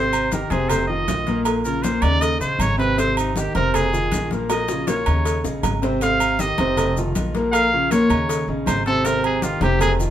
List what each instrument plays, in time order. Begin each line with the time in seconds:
Already playing: upright bass G#1, grand piano C3 C4 C5, trumpet C5
0.13 high conga, low agogo, maracas
0.32 grand piano D#3 D#4 G4, trumpet A#4, cowbell, high conga, maracas
0.50 upright bass F1, grand piano C3 C4 C5, trumpet G#4, cowbell, high conga, low agogo, maracas
0.69 trumpet C5, cowbell, high conga, low conga, low agogo, maracas
0.88 grand piano D#3 D#4 F4, trumpet D#5, high conga
1.08 upright bass A#1, grand piano D#3 D#4 F4, cowbell, high conga, low timbale, low agogo, maracas
1.27 grand piano A#2 A#3 A#4, cowbell, high conga, maracas
1.45 cowbell, high conga, low agogo, maracas
1.64 grand piano C#3 C#4 F4, trumpet A#4, high conga, maracas
1.83 grand piano A#2 A#3 A#4, trumpet C5, cowbell, high conga, low agogo, maracas
2.02 upright bass D#2, grand piano C#3 C#4 D#4, trumpet D5, cowbell, high conga, low agogo, maracas
2.21 trumpet D#5, cowbell, high conga, low agogo, maracas
2.40 upright bass A#1, grand piano C#3 C#4 D#4, trumpet C5, high conga, maracas
2.59 upright bass G#1, trumpet C#5, cowbell, high conga, low agogo, maracas
2.77 grand piano C3 C4 C5, trumpet B4, cowbell, maracas
2.98 grand piano C3 C4 C5, trumpet C5, cowbell, high conga, low agogo, maracas
3.17 trumpet D#4, high conga, low agogo, maracas
3.36 grand piano D#3 D#4 G4, trumpet G4, cowbell, high conga, maracas
3.55 upright bass F1, grand piano C3 C4 C5, trumpet A#4, cowbell, high conga, low agogo, maracas
3.74 trumpet G#4, cowbell, high conga, low conga, low agogo, maracas
3.93 grand piano D#3 D#4 F4, high conga, low conga, maracas
4.12 upright bass A#1, grand piano D#3 D#4 F4, cowbell, high conga, low agogo, maracas
4.31 grand piano A#2 A#3 A#4, cowbell, high conga, maracas
4.50 trumpet D#5, cowbell, high bongo, high conga, low agogo, maracas
4.68 grand piano C#3 C#4 F4, high bongo, high conga, maracas
4.87 grand piano A#2 A#3 A#4, trumpet C#5, cowbell, high bongo, high conga, low agogo, maracas
5.06 upright bass D#2, grand piano C#3 C#4 D#4, cowbell, high conga, low agogo, maracas
5.25 cowbell, high conga, low agogo, maracas
5.43 upright bass A#1, grand piano C#3 C#4 D#4, low bongo, high conga, maracas
5.63 upright bass G#1, cowbell, low bongo, high conga, low timbale, low agogo, maracas
5.82 grand piano C3 C4 C5, cowbell, low bongo, maracas
6.01 grand piano C3 C4 C5, trumpet F5, cowbell, high conga, low agogo, maracas
6.20 high conga, low agogo, maracas
6.39 grand piano D#3 D#4 G4, trumpet D#5, cowbell, high conga, maracas
6.58 upright bass F1, grand piano C3 C4 C5, cowbell, high conga, low agogo, maracas
6.77 cowbell, high conga, low conga, low agogo, maracas
6.97 grand piano D#3 D#4 F4, high conga, low conga, maracas
7.15 upright bass A#1, grand piano D#3 D#4 F4, cowbell, high conga, low agogo, maracas
7.35 grand piano A#2 A#3 A#4, cowbell, high conga, maracas
7.52 trumpet F5, cowbell, high conga, low agogo, maracas
7.73 grand piano C#3 C#4 F4, high conga
7.91 grand piano A#2 A#3 A#4, trumpet C#5, cowbell, high conga, low agogo, maracas
8.10 upright bass D#2, grand piano C#3 C#4 D#4, cowbell, high conga, low agogo, maracas
8.29 cowbell, high conga, low agogo, maracas
8.48 upright bass A#1, grand piano C#3 C#4 D#4, high conga
8.66 upright bass G#1, trumpet C5, cowbell, high conga, low timbale, low agogo, maracas
8.86 grand piano C3 C4 C5, trumpet A4, cowbell, maracas
9.05 grand piano C3 C4 C5, trumpet A#4, cowbell, high conga, low agogo, maracas
9.24 trumpet G#4, high conga, low agogo
9.42 grand piano D#3 D#4 G4, trumpet F4, cowbell, high conga, maracas
9.61 upright bass F1, grand piano C3 C4 C5, trumpet G4, cowbell, high conga, low agogo, maracas
9.79 trumpet G#4, cowbell, high conga, low conga, low agogo, maracas
9.99 grand piano D#3 D#4 F4, high conga, maracas